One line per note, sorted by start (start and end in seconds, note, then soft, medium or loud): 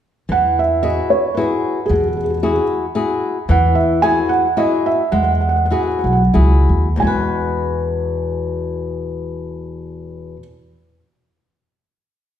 0.29 0.99 E2 medium
0.29 0.81 E3 soft
0.29 0.59 F#5 medium
0.59 0.84 E5 medium
0.82 1.25 E4 soft
0.82 1.25 F#4 soft
0.82 1.26 G#4 medium
0.82 1.08 D#5 medium
1.10 1.37 C#5 medium
1.34 1.79 E4 soft
1.34 1.79 F#4 soft
1.34 1.84 B4 medium
1.39 1.80 G#4 soft
1.86 2.58 E2 medium
1.86 1.92 G#4 medium
1.90 2.41 B2 soft
1.90 2.00 G#4 medium
2.01 2.07 G#4 soft
2.08 2.15 G#4 soft
2.17 2.23 G#4 soft
2.24 2.29 G#4 soft
2.30 2.36 G#4 soft
2.38 2.42 G#4 soft
2.43 2.84 E4 soft
2.43 2.85 F#4 soft
2.43 2.85 G#4 soft
2.43 2.51 G#4 soft
2.53 2.61 G#4 soft
2.95 3.37 E4 soft
2.95 3.37 F#4 soft
2.95 3.38 G#4 medium
3.49 4.19 E2 medium
3.49 4.00 E3 medium
3.49 3.77 F#5 medium
3.75 3.99 E5 medium
4.02 4.46 E4 soft
4.02 4.46 F#4 soft
4.02 4.46 G#4 medium
4.02 4.28 G#5 medium
4.29 4.54 F#5 medium
4.57 5.02 E4 soft
4.57 5.02 F#4 soft
4.57 5.02 G#4 medium
4.57 4.86 D#5 medium
4.86 5.11 E5 medium
5.12 5.72 E2 medium
5.12 5.70 G#3 soft
5.12 5.20 F#5 medium
5.23 5.30 F#5 medium
5.32 5.38 F#5 medium
5.41 5.47 F#5 soft
5.49 5.54 F#5 medium
5.56 5.63 F#5 soft
5.65 5.70 F#5 medium
5.71 6.21 E4 soft
5.71 6.22 F#4 soft
5.71 6.22 G#4 soft
5.71 5.79 F#5 soft
5.81 5.86 F#5 soft
5.87 5.96 F#5 soft
5.99 6.03 F#5 medium
6.04 6.31 B1 medium
6.04 6.11 F#5 soft
6.13 6.21 F#5 medium
6.34 6.65 C#2 medium
6.34 6.87 E4 soft
6.34 6.88 F#4 soft
6.34 6.88 G#4 soft
6.69 6.98 D#2 medium
6.96 10.35 E2 soft
6.96 10.36 B2 soft
6.96 10.39 G#5 medium
7.00 10.41 E2 medium
7.00 10.39 G#3 soft
7.00 7.04 E4 soft
7.04 10.43 F#4 soft
7.04 10.45 B4 soft